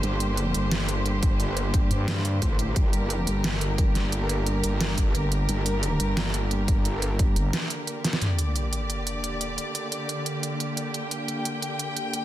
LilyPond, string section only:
\new Staff \with { instrumentName = "String section" } { \time 4/4 \key g \minor \tempo 4 = 176 << { c''1~ | c''1 | bes'1~ | bes'1~ |
bes'1~ | bes'1 | d''1~ | d''1 |
g''1 | } \\ { <d bes g'>1~ | <d bes g'>1~ | <d bes g'>1~ | <d bes g'>1~ |
<d bes g'>1~ | <d bes g'>1 | <d bes g'>1~ | <d bes g'>1~ |
<d bes g'>1 | } >> }